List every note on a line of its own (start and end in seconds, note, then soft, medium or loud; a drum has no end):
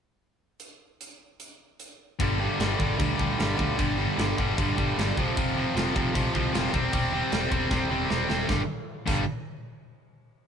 0.60 closed hi-hat medium
1.01 closed hi-hat medium
1.40 closed hi-hat medium
1.80 closed hi-hat medium
2.19 2.47 G1 loud
2.19 2.39 G2 loud
2.19 2.39 D3 loud
2.19 2.40 G3 loud
2.19 kick loud
2.19 crash medium
2.39 2.58 G2 medium
2.39 2.58 D3 medium
2.39 2.59 G3 medium
2.59 2.74 G1 medium
2.59 2.77 G2 medium
2.59 2.78 D3 medium
2.59 2.78 G3 medium
2.59 snare loud
2.59 crash medium
2.79 2.94 G1 medium
2.79 2.97 G2 medium
2.79 2.97 D3 medium
2.79 2.98 G3 loud
2.79 kick medium
2.98 3.13 D2 loud
2.98 3.17 G2 medium
2.98 3.17 D3 medium
2.98 3.18 G3 loud
2.98 kick loud
2.98 crash medium
3.18 3.33 D2 medium
3.18 3.37 G2 medium
3.18 3.38 D3 loud
3.18 3.38 G3 loud
3.18 kick medium
3.38 3.53 G1 medium
3.38 3.56 G2 medium
3.38 3.56 D3 medium
3.38 3.57 G3 loud
3.38 snare loud
3.38 crash medium
3.57 3.73 D2 medium
3.57 3.76 G2 medium
3.57 3.77 D3 loud
3.57 3.77 G3 medium
3.57 kick medium
3.77 4.06 G1 medium
3.77 3.96 G2 loud
3.77 3.97 D3 loud
3.77 3.98 G3 loud
3.77 kick loud
3.77 crash medium
3.98 4.16 G2 medium
3.98 4.17 D3 medium
3.98 4.17 G3 loud
4.17 4.32 G1 medium
4.17 4.36 G2 medium
4.17 4.36 D3 medium
4.17 4.36 G3 medium
4.17 snare loud
4.17 crash medium
4.37 4.52 G1 medium
4.37 4.56 G2 medium
4.37 4.56 D3 medium
4.37 4.57 G3 loud
4.37 kick medium
4.57 4.72 G1 medium
4.57 4.75 G2 loud
4.57 4.76 D3 loud
4.57 4.77 G3 loud
4.57 kick loud
4.57 crash medium
4.77 4.91 G1 medium
4.77 4.96 G2 medium
4.77 4.96 D3 loud
4.77 4.97 G3 loud
4.77 kick medium
4.97 5.11 G1 medium
4.97 5.16 G2 medium
4.97 5.16 D3 loud
4.97 5.16 G3 loud
4.97 snare loud
4.97 crash medium
5.17 5.31 F1 medium
5.17 5.36 F2 medium
5.17 5.36 C3 loud
5.17 5.37 F3 loud
5.17 kick medium
5.37 5.64 F1 loud
5.37 5.54 F2 loud
5.37 5.55 C3 loud
5.37 5.55 F3 loud
5.37 kick loud
5.37 crash medium
5.56 5.74 F2 medium
5.56 5.75 C3 loud
5.56 5.75 F3 medium
5.75 5.89 F1 medium
5.75 5.94 F2 medium
5.75 5.94 C3 medium
5.75 5.95 F3 medium
5.75 snare loud
5.75 crash medium
5.95 6.09 F1 loud
5.95 6.13 F2 medium
5.95 6.14 C3 medium
5.95 6.14 F3 medium
5.95 kick medium
6.14 6.29 C2 medium
6.14 6.32 F2 loud
6.14 6.33 C3 medium
6.14 6.34 F3 loud
6.14 kick loud
6.14 crash medium
6.34 6.48 C2 medium
6.34 6.52 F2 medium
6.34 6.52 C3 medium
6.34 6.53 F3 loud
6.34 kick medium
6.53 6.68 F1 medium
6.53 6.72 F2 medium
6.53 6.71 C3 loud
6.53 6.72 F3 medium
6.53 snare loud
6.53 crash medium
6.73 6.87 E1 medium
6.73 6.91 C3 medium
6.73 6.92 G3 loud
6.73 6.92 C4 loud
6.73 kick medium
6.93 7.20 E1 medium
6.93 7.11 C3 loud
6.93 7.12 G3 loud
6.93 7.12 C4 loud
6.93 kick loud
6.93 crash medium
7.12 7.31 C3 medium
7.12 7.31 G3 medium
7.12 7.32 C4 loud
7.32 7.46 E1 medium
7.32 7.50 C3 medium
7.32 7.51 G3 medium
7.32 7.51 C4 medium
7.32 snare loud
7.32 crash medium
7.51 7.65 E1 medium
7.51 7.69 C3 medium
7.51 7.70 G3 medium
7.51 7.71 C4 medium
7.51 kick medium
7.71 7.84 E1 medium
7.71 7.89 C3 medium
7.71 7.90 G3 medium
7.71 7.90 C4 loud
7.71 kick loud
7.71 snare medium
7.90 8.04 E1 medium
7.90 8.08 C3 medium
7.90 8.09 G3 medium
7.90 8.09 C4 loud
8.09 8.24 E1 medium
8.09 8.27 C3 medium
8.09 8.28 G3 medium
8.09 8.28 C4 medium
8.09 snare medium
8.29 8.44 E1 medium
8.29 8.47 C3 medium
8.29 8.48 G3 medium
8.29 8.48 C4 medium
8.29 snare medium
8.47 8.60 G1 loud
8.47 8.60 G2 loud
8.47 8.60 D3 loud
8.47 8.61 G3 loud
8.47 kick loud
8.47 snare medium
9.06 9.26 G1 loud
9.06 9.22 G2 loud
9.06 9.23 D3 loud
9.06 9.23 G3 loud
9.06 kick loud
9.06 crash loud